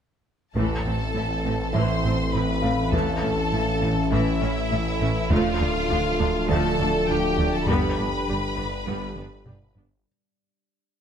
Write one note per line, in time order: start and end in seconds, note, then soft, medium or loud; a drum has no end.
0.54 0.63 A1 soft
0.54 5.32 A1 medium
0.54 0.63 A2 soft
0.54 5.26 E3 medium
0.54 0.83 E3 medium
0.54 5.27 E3 soft
0.54 0.83 A3 soft
0.54 5.27 A3 soft
0.54 2.88 C4 medium
0.54 2.90 C4 soft
0.54 5.26 A4 medium
0.54 1.71 A4 medium
0.54 1.70 A5 medium
0.54 taiko soft
0.85 0.94 A1 soft
0.85 0.93 A2 soft
0.85 0.93 A3 soft
0.85 0.93 C4 soft
1.15 1.24 A1 soft
1.15 1.23 A2 soft
1.15 1.24 C4 soft
1.15 1.24 E4 soft
1.45 1.53 A1 soft
1.45 1.53 A2 soft
1.45 1.53 A3 soft
1.45 1.53 C4 soft
1.73 1.83 A1 medium
1.73 1.82 A2 medium
1.73 2.03 E3 soft
1.73 2.02 A3 soft
1.73 2.34 C5 medium
1.73 3.48 E5 soft
1.73 2.33 C6 medium
2.04 2.13 A1 soft
2.04 2.12 A2 soft
2.04 2.13 A3 soft
2.04 2.13 C4 soft
2.33 2.43 A1 soft
2.33 2.41 A2 soft
2.33 2.43 C4 soft
2.33 2.43 E4 soft
2.33 2.93 B4 medium
2.33 2.93 B5 medium
2.62 2.72 A1 soft
2.62 2.71 A2 soft
2.62 2.72 A3 soft
2.62 2.72 C4 soft
2.62 4.37 F5 soft
2.91 3.02 A1 medium
2.91 3.00 A2 medium
2.91 3.21 E3 medium
2.91 3.21 A3 medium
2.91 5.30 C#4 medium
2.91 5.31 C#4 soft
2.91 4.12 A4 medium
2.91 4.09 A5 medium
2.91 taiko medium
3.22 3.32 A1 soft
3.22 3.30 A2 soft
3.22 3.30 A3 soft
3.22 3.31 C#4 soft
3.52 3.61 A1 soft
3.52 3.60 A2 soft
3.52 3.61 C#4 soft
3.52 3.61 E4 soft
3.81 3.91 A1 soft
3.81 3.89 A2 soft
3.81 3.90 A3 soft
3.81 3.90 C#4 soft
4.11 4.21 A1 medium
4.11 4.19 A2 medium
4.11 4.39 E3 medium
4.11 4.39 A3 soft
4.11 5.28 E4 medium
4.11 5.28 E5 medium
4.40 4.51 A1 soft
4.40 4.49 A2 soft
4.40 4.48 A3 soft
4.40 4.49 C#4 soft
4.71 4.80 A1 soft
4.71 4.79 A2 soft
4.71 4.79 C#4 soft
4.71 4.79 E4 soft
5.00 5.09 A1 soft
5.00 5.09 A2 soft
5.00 5.08 A3 medium
5.00 5.08 C#4 medium
5.30 7.70 D1 medium
5.30 5.38 D2 medium
5.30 9.77 D3 medium
5.30 5.58 F3 medium
5.30 7.69 F3 medium
5.30 5.59 A3 medium
5.30 7.65 A3 medium
5.30 10.06 D4 medium
5.30 9.73 D4 medium
5.30 6.50 F4 medium
5.30 7.65 F4 medium
5.30 7.64 A4 medium
5.30 10.06 D5 medium
5.30 6.47 F5 medium
5.30 taiko medium
5.60 5.68 D2 medium
5.60 5.69 D2 medium
5.60 5.69 A3 medium
5.60 5.69 D4 soft
5.90 5.98 D2 medium
5.90 5.99 D2 medium
5.90 5.98 D4 medium
5.90 5.99 F4 soft
6.19 6.27 D2 medium
6.19 6.28 D2 soft
6.19 6.29 A3 medium
6.19 6.29 D4 medium
6.49 6.57 D2 medium
6.49 6.58 D2 medium
6.49 6.78 F3 medium
6.49 6.78 A3 medium
6.49 7.08 A4 medium
6.49 7.08 A5 medium
6.79 6.87 D2 soft
6.79 6.87 D2 medium
6.79 6.89 A3 medium
6.79 6.89 D4 soft
7.08 7.16 D2 soft
7.08 7.17 D2 soft
7.08 7.18 D4 medium
7.08 7.18 F4 medium
7.08 7.54 G4 medium
7.08 7.54 G5 medium
7.38 7.46 D2 soft
7.38 7.47 D2 medium
7.38 7.47 A3 medium
7.38 7.47 D4 soft
7.53 7.69 A4 medium
7.53 7.68 A5 medium
7.66 10.06 G1 medium
7.66 7.77 G1 medium
7.66 7.75 G2 medium
7.66 9.76 G3 medium
7.66 10.06 G3 medium
7.66 7.96 G3 medium
7.66 7.96 B3 medium
7.66 10.06 G4 medium
7.66 9.77 G4 medium
7.66 9.77 B4 medium
7.66 9.75 B5 medium
7.66 taiko medium
7.97 8.07 G1 soft
7.97 8.05 G2 soft
7.97 8.07 B3 soft
7.97 8.07 D4 soft
8.27 8.37 G1 soft
8.27 8.35 G2 soft
8.27 8.36 D4 soft
8.27 8.37 G4 soft
8.56 8.67 G1 soft
8.56 8.64 G2 soft
8.56 8.65 B3 soft
8.56 8.65 D4 soft
8.87 8.96 G1 medium
8.87 8.95 G2 medium
8.87 9.15 G3 medium
8.87 9.15 B3 medium
9.16 9.26 G1 soft
9.16 9.24 G2 soft
9.16 9.25 B3 medium
9.16 9.25 D4 soft
9.16 taiko mid medium
9.45 9.56 G1 soft
9.45 9.53 G2 soft
9.45 9.55 D4 soft
9.45 9.55 G4 medium
9.45 taiko low-mid medium
9.75 9.86 G1 soft
9.75 9.83 G2 soft
9.75 9.84 B3 soft
9.75 9.85 D4 medium
9.75 taiko low medium